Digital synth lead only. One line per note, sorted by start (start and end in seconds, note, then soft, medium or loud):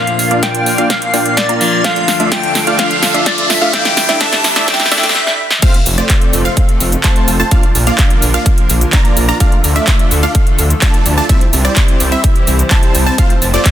0.00 0.44 F5 loud
0.43 0.91 G5 loud
0.90 1.39 F5 loud
1.37 1.60 D5 medium
1.61 1.86 D5 medium
1.84 2.31 F5 loud
2.31 2.80 G5 loud
2.79 3.27 F5 loud
3.26 3.51 D5 loud
3.50 3.75 E5 loud
3.73 4.22 G5 loud
4.21 4.67 A5 loud
4.68 5.17 G5 loud
5.15 5.39 E5 loud